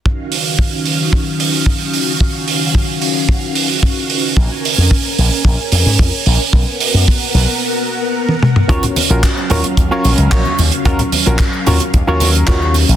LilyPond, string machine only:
\new Staff \with { instrumentName = "String machine" } { \time 4/4 \key ees \minor \tempo 4 = 111 << { <ees ges' f''>1~ | <ees ges' f''>1 | <bes' aes''>1 | <bes' ges''>1 |
<ges f''>1~ | <ges f''>1 | } \\ { des'1~ | des'1~ | des'1 | ces'1 |
des'1~ | des'1 | } >> }